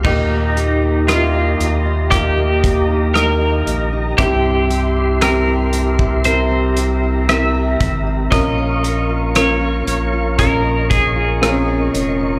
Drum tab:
CC |x---------------|----------------|----------------|
HH |--x-x-x-x-x-x-x-|x-x-x-x-x-x-x-x-|x-x-x-x-x-x-x-x-|
SD |----r-------r---|----r-------r---|----r-------r---|
BD |o-------o-o-----|o------o------o-|o-------o-o-----|